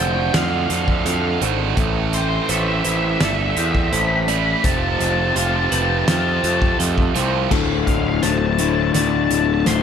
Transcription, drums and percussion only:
0.34 snare, closed hi-hat
0.70 closed hi-hat
0.88 kick
1.06 closed hi-hat
1.42 closed hi-hat
1.77 kick, closed hi-hat
2.13 closed hi-hat
2.49 closed hi-hat
2.85 closed hi-hat
3.21 snare, closed hi-hat
3.57 closed hi-hat
3.75 kick
3.93 closed hi-hat
4.28 closed hi-hat
4.64 kick, closed hi-hat
5.00 closed hi-hat
5.36 closed hi-hat
5.72 closed hi-hat
6.08 snare, closed hi-hat
6.44 closed hi-hat
6.62 kick
6.80 closed hi-hat
6.98 kick
7.16 closed hi-hat
7.51 kick, snare, crash
7.87 kick, closed hi-hat
8.23 snare, closed hi-hat
8.59 closed hi-hat
8.94 snare, closed hi-hat
9.31 closed hi-hat
9.66 snare, closed hi-hat

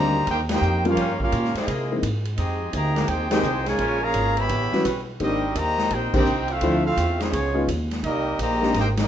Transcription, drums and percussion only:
0.27 kick, ride
0.49 snare, ride
0.62 hi-hat pedal
0.85 ride
0.97 kick, ride
1.20 kick
1.32 kick, hi-hat pedal, ride
1.44 snare
1.55 snare, ride
1.68 kick, ride
2.03 kick, hi-hat pedal, ride
2.25 ride
2.38 kick, ride
2.73 kick, hi-hat pedal, ride
2.96 snare, ride
3.08 kick, ride
3.31 snare, ride
3.43 hi-hat pedal
3.66 snare, ride
3.78 kick, ride
4.14 kick, hi-hat pedal, ride
4.37 ride
4.49 kick, ride
4.72 snare
4.85 kick, hi-hat pedal, ride
5.20 kick, ride
5.55 kick, hi-hat pedal, ride
5.78 snare
5.90 kick, ride
6.14 kick, crash
6.26 hi-hat pedal
6.48 ride
6.61 kick, ride
6.97 kick, hi-hat pedal, ride
7.20 snare, ride
7.33 kick, ride
7.68 kick, hi-hat pedal, ride
7.91 snare, ride
8.03 kick, ride
8.39 kick, hi-hat pedal, ride
8.62 snare
8.74 kick, snare, ride
8.97 snare, ride

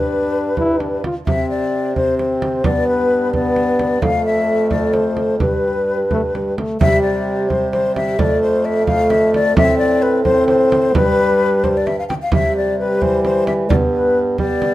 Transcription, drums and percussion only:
0.57 frame drum
0.80 frame drum
1.04 frame drum
1.27 frame drum
1.96 frame drum
2.19 frame drum
2.42 frame drum
2.64 frame drum
3.34 frame drum
3.56 frame drum
3.79 frame drum
4.02 frame drum
4.71 frame drum
4.94 frame drum
5.17 frame drum
5.40 frame drum
6.11 frame drum
6.35 frame drum
6.58 frame drum
6.81 frame drum
7.50 frame drum
7.73 frame drum
7.96 frame drum
8.19 frame drum
8.87 frame drum
9.10 frame drum
9.34 frame drum
9.57 frame drum
10.25 frame drum
10.48 frame drum
10.72 frame drum
10.95 frame drum
11.64 frame drum
11.87 frame drum
12.10 frame drum
12.32 frame drum
13.02 frame drum
13.25 frame drum
13.47 frame drum
13.70 frame drum
14.38 frame drum
14.62 frame drum

